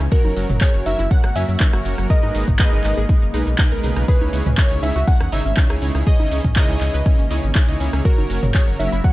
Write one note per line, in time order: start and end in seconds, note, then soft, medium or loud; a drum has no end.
0.00 shaker soft
0.12 2.08 C#3 medium
0.12 0.34 F#3 medium
0.12 2.08 F#3 medium
0.12 4.04 A#3 medium
0.12 0.34 C#4 medium
0.12 0.21 F#4 loud
0.12 0.34 F#4 medium
0.12 2.08 F#4 medium
0.12 0.34 A#4 medium
0.12 0.63 A#4 medium
0.12 0.58 A#4 medium
0.12 0.34 C#5 loud
0.12 kick loud
0.12 closed hi-hat medium
0.12 crash medium
0.12 shaker soft
0.25 0.33 F#1 medium
0.25 0.33 F#3 medium
0.25 closed hi-hat soft
0.25 high conga loud
0.36 0.45 F#1 loud
0.36 0.45 F#3 medium
0.36 0.46 F#3 medium
0.36 0.45 C#4 medium
0.36 0.45 F#4 medium
0.36 0.45 A#4 medium
0.36 0.45 C#5 loud
0.36 open hi-hat loud
0.36 shaker medium
0.49 0.58 F#1 medium
0.49 0.58 F#3 medium
0.49 closed hi-hat soft
0.49 mid tom medium
0.49 shaker soft
0.61 0.83 F#3 loud
0.61 0.83 C#4 medium
0.61 0.83 F#4 medium
0.61 0.71 G#4 loud
0.61 0.83 A#4 medium
0.61 0.83 C#5 loud
0.61 0.85 C#5 loud
0.61 0.84 C#5 medium
0.61 kick loud
0.61 clap loud
0.61 closed hi-hat medium
0.61 shaker soft
0.74 0.82 F#1 medium
0.74 0.83 F#3 medium
0.74 open hi-hat medium
0.86 0.95 F#1 loud
0.86 1.00 F#3 medium
0.86 0.96 F#3 medium
0.86 1.00 C#4 medium
0.86 1.00 F#4 medium
0.86 1.00 A#4 medium
0.86 1.00 C#5 medium
0.86 1.12 E5 loud
0.86 1.09 E5 loud
0.86 open hi-hat loud
0.86 high conga medium
0.86 shaker medium
0.99 1.07 F#1 medium
0.99 1.08 E4 loud
0.99 closed hi-hat soft
0.99 shaker soft
1.11 1.20 F#3 medium
1.11 1.19 F#3 medium
1.11 1.19 C#4 medium
1.11 1.19 F#4 medium
1.11 1.19 A#4 medium
1.11 1.19 C#5 loud
1.11 1.37 F#5 loud
1.11 1.34 F#5 loud
1.11 kick loud
1.11 closed hi-hat medium
1.11 shaker soft
1.24 1.32 G#1 medium
1.24 1.33 F#3 medium
1.24 cross-stick medium
1.24 closed hi-hat soft
1.36 1.45 F#2 loud
1.36 1.44 F#3 loud
1.36 1.44 C#4 medium
1.36 1.45 C#4 medium
1.36 1.44 F#4 medium
1.36 1.44 A#4 medium
1.36 1.44 C#5 loud
1.36 1.85 E5 loud
1.36 1.82 E5 loud
1.36 open hi-hat loud
1.36 shaker medium
1.49 1.57 F#2 medium
1.49 1.57 F#3 medium
1.49 closed hi-hat soft
1.49 shaker soft
1.60 1.70 F#3 medium
1.60 1.82 F#3 loud
1.60 1.82 C#4 medium
1.60 1.82 F#4 medium
1.60 1.82 A#4 medium
1.60 1.82 C#5 loud
1.60 kick loud
1.60 clap loud
1.60 closed hi-hat medium
1.60 high conga medium
1.60 shaker soft
1.73 1.82 F#1 medium
1.73 1.82 F#4 medium
1.73 cross-stick medium
1.73 closed hi-hat soft
1.85 1.94 F#1 loud
1.85 1.95 F#3 medium
1.85 1.95 C#4 medium
1.85 1.95 F#4 medium
1.85 1.95 A#4 medium
1.85 1.95 C#5 loud
1.85 open hi-hat loud
1.85 shaker medium
1.98 2.06 F#1 medium
1.98 2.07 F#3 medium
1.98 2.06 C#4 medium
1.98 2.06 F#4 medium
1.98 2.06 A#4 medium
1.98 2.06 C#5 medium
1.98 cross-stick medium
1.98 closed hi-hat soft
1.98 shaker soft
2.10 4.06 B2 medium
2.10 2.32 G#3 medium
2.10 6.03 G#3 medium
2.10 2.32 D#4 medium
2.10 2.32 G#4 medium
2.10 2.20 A#4 loud
2.10 2.32 A#4 medium
2.10 2.32 B4 loud
2.10 2.56 D#5 loud
2.10 kick loud
2.10 closed hi-hat medium
2.10 shaker soft
2.23 2.31 G#2 medium
2.23 2.32 D#4 medium
2.23 closed hi-hat soft
2.23 high conga loud
2.35 2.44 G#1 loud
2.35 2.43 G#3 medium
2.35 2.44 D#4 medium
2.35 2.43 D#4 medium
2.35 2.43 G#4 medium
2.35 2.43 A#4 medium
2.35 2.43 B4 loud
2.35 open hi-hat loud
2.35 shaker medium
2.48 2.56 G#1 medium
2.48 2.56 D#4 medium
2.48 kick medium
2.48 mid tom loud
2.48 shaker soft
2.59 2.82 G#3 loud
2.59 2.82 D#4 medium
2.59 2.82 G#4 medium
2.59 2.82 A#4 medium
2.59 2.69 B4 medium
2.59 2.82 B4 loud
2.59 3.55 D#5 loud
2.59 kick loud
2.59 clap loud
2.59 closed hi-hat medium
2.59 shaker soft
2.72 2.81 G#1 medium
2.72 2.81 D#4 medium
2.72 closed hi-hat soft
2.84 2.93 G#1 loud
2.84 2.98 G#3 medium
2.84 2.94 D#4 medium
2.84 2.98 D#4 medium
2.84 2.98 G#4 medium
2.84 2.98 A#4 medium
2.84 2.98 B4 medium
2.84 clap soft
2.84 open hi-hat loud
2.84 shaker medium
2.97 3.05 G#1 medium
2.97 3.06 G#4 loud
2.97 closed hi-hat soft
2.97 shaker soft
3.09 3.18 G#3 medium
3.09 3.18 D#4 medium
3.09 3.19 D#4 medium
3.09 3.18 G#4 medium
3.09 3.18 A#4 medium
3.09 3.18 B4 loud
3.09 kick loud
3.09 closed hi-hat medium
3.09 shaker soft
3.22 3.30 F#1 medium
3.22 3.31 D#4 medium
3.22 closed hi-hat soft
3.34 3.43 B1 loud
3.34 3.43 G#3 loud
3.34 3.44 D#4 medium
3.34 3.43 D#4 medium
3.34 3.43 G#4 medium
3.34 3.43 A#4 medium
3.34 3.43 B4 loud
3.34 open hi-hat loud
3.34 shaker medium
3.47 3.55 B1 medium
3.47 3.56 D#4 medium
3.47 closed hi-hat soft
3.47 shaker soft
3.58 3.81 G#3 loud
3.58 3.68 D#4 medium
3.58 3.81 D#4 medium
3.58 3.81 G#4 medium
3.58 3.81 A#4 medium
3.58 3.81 B4 loud
3.58 kick loud
3.58 clap loud
3.58 closed hi-hat medium
3.58 high conga loud
3.58 shaker soft
3.72 3.80 B1 medium
3.72 3.80 A#4 loud
3.72 closed hi-hat soft
3.83 3.92 B1 loud
3.83 3.93 C#3 loud
3.83 3.93 D#4 medium
3.83 3.93 G#4 medium
3.83 3.93 A#4 medium
3.83 3.93 B4 loud
3.83 open hi-hat loud
3.83 shaker medium
3.96 4.05 B1 medium
3.96 4.04 C#3 medium
3.96 4.04 D#4 medium
3.96 4.05 D#4 medium
3.96 4.04 G#4 medium
3.96 4.04 A#4 medium
3.96 4.04 B4 medium
3.96 cross-stick medium
3.96 closed hi-hat soft
3.96 shaker soft
4.08 4.30 C#3 medium
4.08 9.13 C#3 medium
4.08 8.01 E3 medium
4.08 4.30 D#4 medium
4.08 4.30 E4 medium
4.08 4.30 G#4 medium
4.08 4.18 G#4 loud
4.08 4.54 B4 medium
4.08 4.30 C#5 loud
4.08 kick loud
4.08 closed hi-hat medium
4.08 shaker soft
4.21 4.29 C#2 medium
4.21 4.30 C#4 medium
4.21 closed hi-hat soft
4.21 high conga loud
4.33 4.42 C#2 loud
4.33 4.42 C#3 medium
4.33 4.43 C#4 medium
4.33 4.42 D#4 medium
4.33 4.42 E4 medium
4.33 4.42 G#4 medium
4.33 4.42 C#5 loud
4.33 open hi-hat loud
4.33 shaker medium
4.46 4.54 C#2 medium
4.46 4.55 C#4 medium
4.46 closed hi-hat soft
4.46 mid tom loud
4.46 shaker soft
4.58 4.80 C#3 loud
4.58 4.80 D#4 medium
4.58 4.80 E4 medium
4.58 4.80 G#4 medium
4.58 4.68 A#4 medium
4.58 4.80 C#5 loud
4.58 4.81 C#5 medium
4.58 4.81 C#5 loud
4.58 kick loud
4.58 clap loud
4.58 closed hi-hat medium
4.58 shaker soft
4.71 4.79 C#2 medium
4.71 4.80 C#4 medium
4.71 open hi-hat medium
4.83 4.92 C#2 loud
4.83 4.96 C#3 medium
4.83 4.92 C#4 medium
4.83 4.96 D#4 medium
4.83 4.96 E4 medium
4.83 4.96 G#4 medium
4.83 4.96 C#5 medium
4.83 5.09 E5 loud
4.83 5.06 E5 loud
4.83 open hi-hat loud
4.83 high conga medium
4.83 shaker medium
4.96 5.04 C#2 medium
4.96 5.04 F#4 loud
4.96 closed hi-hat soft
4.96 shaker soft
5.08 5.16 C#3 loud
5.08 5.17 C#4 medium
5.08 5.16 D#4 medium
5.08 5.16 E4 medium
5.08 5.16 G#4 medium
5.08 5.16 C#5 loud
5.08 5.31 F#5 loud
5.08 5.34 F#5 loud
5.08 kick loud
5.08 closed hi-hat medium
5.08 shaker soft
5.20 5.29 D#2 medium
5.20 5.29 C#4 medium
5.20 cross-stick medium
5.20 closed hi-hat soft
5.32 5.41 G#1 loud
5.32 5.41 C#3 loud
5.32 5.42 D#4 loud
5.32 5.41 D#4 medium
5.32 5.41 E4 medium
5.32 5.41 G#4 medium
5.32 5.41 C#5 loud
5.32 5.82 E5 loud
5.32 5.79 E5 loud
5.32 open hi-hat loud
5.32 shaker medium
5.45 5.53 G#1 medium
5.45 5.54 C#4 medium
5.45 closed hi-hat soft
5.45 shaker soft
5.57 5.79 C#3 loud
5.57 5.67 C#4 medium
5.57 5.79 D#4 medium
5.57 5.79 E4 medium
5.57 5.79 G#4 medium
5.57 5.79 C#5 loud
5.57 kick loud
5.57 clap loud
5.57 closed hi-hat medium
5.57 high conga medium
5.57 shaker soft
5.70 5.78 C#2 medium
5.70 5.79 G#4 loud
5.70 cross-stick medium
5.70 closed hi-hat soft
5.82 5.91 C#2 loud
5.82 5.92 C#3 medium
5.82 5.91 C#4 medium
5.82 5.92 D#4 medium
5.82 5.92 E4 medium
5.82 5.92 G#4 medium
5.82 5.92 C#5 loud
5.82 open hi-hat loud
5.82 shaker medium
5.95 6.03 C#2 medium
5.95 6.03 C#3 medium
5.95 6.04 C#4 medium
5.95 6.03 D#4 medium
5.95 6.03 E4 medium
5.95 6.03 G#4 medium
5.95 6.03 C#5 medium
5.95 cross-stick medium
5.95 closed hi-hat soft
5.95 shaker soft
6.07 6.29 C#3 medium
6.07 8.03 A#3 medium
6.07 6.29 D#4 medium
6.07 6.29 E4 medium
6.07 6.16 G#4 loud
6.07 6.29 G#4 medium
6.07 6.29 C#5 loud
6.07 6.53 D#5 loud
6.07 kick loud
6.07 closed hi-hat medium
6.07 shaker soft
6.20 6.28 G#1 medium
6.20 6.28 C#4 medium
6.20 closed hi-hat soft
6.20 high conga loud
6.31 6.40 C#2 loud
6.31 6.40 C#3 medium
6.31 6.41 C#4 medium
6.31 6.40 D#4 medium
6.31 6.40 E4 medium
6.31 6.40 G#4 medium
6.31 6.40 C#5 loud
6.31 open hi-hat loud
6.31 shaker medium
6.44 6.53 C#2 medium
6.44 6.53 C#4 medium
6.44 kick medium
6.44 closed hi-hat soft
6.44 mid tom loud
6.44 shaker soft
6.56 6.78 C#3 loud
6.56 6.78 D#4 medium
6.56 6.78 E4 medium
6.56 6.78 G#4 medium
6.56 6.66 A#4 medium
6.56 6.78 C#5 loud
6.56 7.52 D#5 loud
6.56 kick loud
6.56 clap loud
6.56 closed hi-hat medium
6.56 shaker soft
6.69 6.77 C#2 medium
6.69 6.78 C#4 medium
6.69 closed hi-hat soft
6.81 6.90 C#2 loud
6.81 6.95 C#3 medium
6.81 6.91 C#4 medium
6.81 6.95 D#4 medium
6.81 6.95 E4 medium
6.81 6.95 G#4 medium
6.81 6.95 C#5 medium
6.81 clap soft
6.81 open hi-hat loud
6.81 shaker medium
6.94 7.02 C#2 medium
6.94 7.03 B4 medium
6.94 closed hi-hat soft
6.94 shaker soft
7.06 7.14 C#3 medium
7.06 7.15 C#4 medium
7.06 7.14 D#4 medium
7.06 7.14 E4 medium
7.06 7.14 G#4 medium
7.06 7.14 C#5 loud
7.06 kick loud
7.06 closed hi-hat medium
7.06 shaker soft
7.19 7.27 G#1 medium
7.19 7.28 C#4 medium
7.19 open hi-hat medium
7.31 7.40 C#2 loud
7.31 7.39 C#3 medium
7.31 7.39 D#4 medium
7.31 7.39 E4 medium
7.31 7.39 G#4 medium
7.31 7.39 C#5 loud
7.31 7.40 D#5 medium
7.31 open hi-hat loud
7.31 shaker medium
7.44 7.52 G#1 medium
7.44 7.52 C#4 medium
7.44 closed hi-hat soft
7.44 shaker soft
7.55 7.77 C#3 loud
7.55 7.65 C#4 medium
7.55 7.77 D#4 medium
7.55 7.77 E4 medium
7.55 7.77 G#4 medium
7.55 7.77 C#5 loud
7.55 kick loud
7.55 clap loud
7.55 closed hi-hat medium
7.55 high conga medium
7.55 shaker soft
7.68 7.77 C#2 medium
7.68 7.77 D#5 loud
7.68 closed hi-hat soft
7.80 7.89 C#2 loud
7.80 7.90 C#4 medium
7.80 7.90 D#4 medium
7.80 7.90 E4 medium
7.80 7.90 G#4 medium
7.80 7.90 C#5 loud
7.80 open hi-hat loud
7.80 shaker medium
7.93 8.01 C#2 medium
7.93 8.02 C#4 medium
7.93 8.01 D#4 medium
7.93 8.01 E4 medium
7.93 8.01 G#4 medium
7.93 8.01 C#5 medium
7.93 cross-stick medium
7.93 closed hi-hat soft
7.93 shaker soft
8.05 8.27 F#3 medium
8.05 9.13 F#3 medium
8.05 9.13 A#3 medium
8.05 8.27 C#4 medium
8.05 8.15 F#4 loud
8.05 8.27 F#4 medium
8.05 9.13 F#4 medium
8.05 8.27 A#4 medium
8.05 8.51 A#4 medium
8.05 8.56 A#4 medium
8.05 8.27 C#5 loud
8.05 kick loud
8.05 closed hi-hat medium
8.05 shaker soft
8.18 8.26 F#1 medium
8.18 8.27 F#3 medium
8.18 closed hi-hat soft
8.18 high conga medium
8.30 8.39 F#1 loud
8.30 8.39 F#3 medium
8.30 8.38 F#3 medium
8.30 8.38 C#4 medium
8.30 8.38 F#4 medium
8.30 8.38 A#4 medium
8.30 8.38 C#5 loud
8.30 open hi-hat loud
8.30 shaker medium
8.43 8.51 F#1 medium
8.43 8.52 F#3 medium
8.43 closed hi-hat soft
8.43 mid tom medium
8.43 shaker soft
8.54 8.77 F#3 loud
8.54 8.77 C#4 medium
8.54 8.77 F#4 medium
8.54 8.64 G#4 medium
8.54 8.77 A#4 medium
8.54 8.77 C#5 loud
8.54 8.78 C#5 loud
8.54 8.79 C#5 loud
8.54 kick loud
8.54 clap loud
8.54 closed hi-hat medium
8.54 shaker soft
8.68 8.76 F#1 medium
8.68 8.76 F#3 medium
8.68 open hi-hat medium
8.79 8.88 F#1 loud
8.79 8.89 F#3 medium
8.79 8.93 F#3 medium
8.79 8.93 C#4 medium
8.79 8.93 F#4 medium
8.79 8.93 A#4 medium
8.79 8.93 C#5 medium
8.79 9.02 E5 loud
8.79 9.03 E5 loud
8.79 open hi-hat loud
8.79 high conga medium
8.79 shaker medium
8.92 9.01 F#1 medium
8.92 9.01 E4 loud
8.92 closed hi-hat soft
8.92 shaker soft
9.04 9.13 F#3 medium
9.04 9.13 C#4 medium
9.04 9.13 F#4 medium
9.04 9.13 A#4 medium
9.04 9.13 C#5 loud
9.04 9.13 F#5 loud
9.04 kick loud
9.04 closed hi-hat medium
9.04 shaker soft